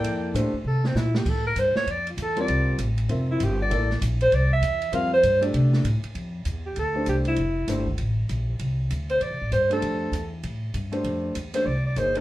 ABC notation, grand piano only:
X:1
M:4/4
L:1/8
Q:"Swing" 1/4=196
K:F
V:1 name="Grand piano"
[B,EAd]2 [A,DGc] z4 z | z6 z [G,CFB]- | [G,CFB]2 z2 [CFBe]3 z | [B,EAd] z6 z |
[G,CFB] z2 [A,DGd]3 z2 | z4 z [A,DGc]3 | z2 [A,DGc] z4 z | z6 z [A,DGc]- |
[A,DGc]2 z4 z [A,DGc]- | [A,DGc]2 z [A,DGc] z2 [B,_E_A_d] [=A,=DGc] |]